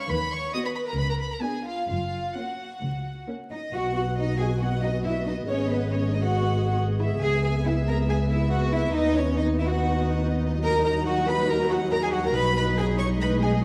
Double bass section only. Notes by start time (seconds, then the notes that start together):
0.10 D#2
0.97 C#2
1.88 F#1
2.81 C#2
3.73 B1
5.47 G#1
7.21 C#2
8.94 D#2
12.34 B1